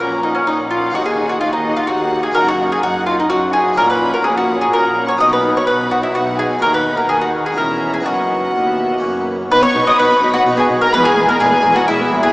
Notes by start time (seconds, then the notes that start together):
Already playing: A#3 C#4 F#4
0.00 A#1 A#2 C#4 A#4 F#5 A#5
0.23 C#4 D#4 D#5 F#5
0.35 C#4 C#5
0.47 A#1 A#2 C#4 D#4 D#5 F#5
0.71 C#4 F4 F5 F#5
0.90 A#3 D#4 F#4
0.94 D#2 D#4 F#4 F#5
1.06 G#4 G#5
1.18 D#4 F#5
1.29 F#4 F#5
1.41 D#2 D#4 F4 F5 F#5
1.53 D#4 D#5
1.66 D#4 F#5
1.77 F4 F5
1.87 D#2 D#4 F#4 F#5
2.12 D#4 F#5
2.23 G#4 G#5
2.32 A#3 D#4 F#4 A#4 F#5 A#5
2.36 F#1 F#2 D#4
2.48 F#4 F#5
2.58 D#4 F#5
2.71 G#4 G#5
2.82 F#1 F#2 D#4 F#4 F#5
3.06 D#4 F4 F5 F#5
3.19 D#4 D#5
3.30 F#1 F#2 D#4 F#4 F#5
3.53 D#4 G#4 F#5 G#5
3.73 A#3 C#4 F#4 F#5 A#5
3.77 A#1 A#2 A#4
3.89 B4 B5
3.99 C#4 F#5
4.14 A#4 A#5
4.24 A#1 A#2 C#4 G#4 F#5 G#5
4.36 F#4 F#5
4.47 C#4 F#5
4.60 G#4 G#5
4.71 A#1 A#2 C#4 A#4 F#5 A#5
4.95 C#4 F#5
5.06 C#5 C#6
5.17 B1 B2 D#4 F#4 D#5 F#5 D#6
5.30 B4 B5
5.43 D#4 F#5
5.54 C#5 C#6
5.65 B1 B2 D#4 B4 F#5 B5
5.90 D#4 F#4 F#5
6.01 E4 E5
6.13 B1 B2 D#4 F#4 F#5
6.37 D#4 G#4 F#5 G#5
6.59 D#2 D#4 F#4 A#4 F#5 A#5
6.73 B4 B5
6.97 A#4 A#5
7.09 D#2 D#3 G#4 G#5
7.20 F#4 F#5
7.45 G#4 G#5
7.53 G#3 C#4 E4
7.57 E1 E2 C#4 A#4 E5 A#5
7.92 G#4 G#5
8.00 B3 D#4
8.05 F#1 F#2 B3 F#4 D#5 F#5
8.54 D#2 D#5
8.67 E5
8.91 D#5
8.98 A#3 C#4 F#4
9.03 F#1 F#2 A#3 C#5
9.16 B4
9.39 C#5
9.50 B1 B2 D#4 B4 B5
9.62 B3 C#5 C#6
9.74 B1 B2 D#4
9.86 B3 D#5 D#6
9.98 B1 B2 B3 D#4 F#4 B4 B5
10.10 B3
10.22 B1 B2 D#4
10.34 B3 F#4 F#5
10.46 B1 B2 B3 D#4 F#4
10.57 B3 G#4 G#5
10.70 B1 B2 D#4
10.81 B3 A#4 A#5
10.93 E1 E2 G#3 B4 B5
11.05 B3 G#4 G#5
11.17 E1 E2 G#3
11.29 B3 A#4 A#5
11.40 E1 E2 G#3 B3 G#4 G#5
11.52 B3
11.64 E1 E2 G#3
11.75 B3 F#4 F#5
11.87 E1 E2 G#3 B3 E4 G#4 E5
12.00 B3
12.12 E1 E2 G#3
12.23 B3 G#4 G#5